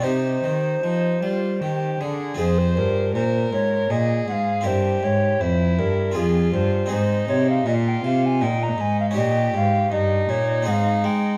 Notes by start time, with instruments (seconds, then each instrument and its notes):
0.00 harpsichord C4 D#4 G4, recorder C5
0.04 cello C3, harpsichord C3, violin D#4
0.44 cello D#3, harpsichord D#3
0.83 cello F3, harpsichord F3, violin D#4
1.22 cello G3, harpsichord G3, violin F4
1.61 cello D#3, harpsichord D#3, violin G4
2.00 cello D3, harpsichord D3, violin G#4
2.34 harpsichord C4 F4 G#4, recorder G#4
2.39 harpsichord F2, cello F2, violin C5
2.58 recorder C5
2.77 harpsichord G2, cello G2, recorder A#4
3.15 cello A#2, harpsichord A#2, violin A#4, recorder C5
3.53 cello G#2, harpsichord G#2, recorder C#5
3.90 harpsichord A#2, cello A#2, violin G#4, recorder D#5
4.28 harpsichord G#2, cello G#2, recorder F#5
4.32 recorder F5
4.61 harpsichord C4 E4 A#4
4.65 harpsichord G2, cello G2, violin G4, recorder C5
5.03 harpsichord G#2, cello G#2, recorder C#5
5.40 harpsichord F2, cello F2, violin E4, recorder C5
5.79 harpsichord G2, cello G2, recorder A#4
6.12 harpsichord C4 F4 G#4
6.16 harpsichord F2, cello F2, violin F4, recorder G#4
6.54 harpsichord G2, cello G2, recorder C5
6.86 harpsichord G#2 C4 D#4 G#4
6.91 cello G#2, violin D#4, recorder C5
7.29 harpsichord C3, cello C3, recorder C#5
7.49 recorder F5
7.66 harpsichord A#2, cello A#2, violin F4, recorder D#5
7.88 recorder G5
8.04 harpsichord C3, cello C3, recorder F5
8.26 recorder G#5
8.41 harpsichord A#2, cello A#2, violin D#4, recorder G5
8.63 recorder A#5
8.78 harpsichord G#2, cello G#2, recorder G#5
9.00 recorder F5
9.11 harpsichord C#4 D#4 G4
9.16 harpsichord A#2, cello A#2, violin G4, recorder D#5
9.54 harpsichord G#2, cello G#2, recorder F5
9.92 harpsichord G2, cello G2, violin D#4, recorder D#5
10.29 harpsichord A#2, cello A#2, recorder C#5
10.62 harpsichord C4 D#4 G#4
10.67 harpsichord G#2, cello G#2, recorder F5 F#5
11.04 harpsichord G#3, cello G#3, recorder G5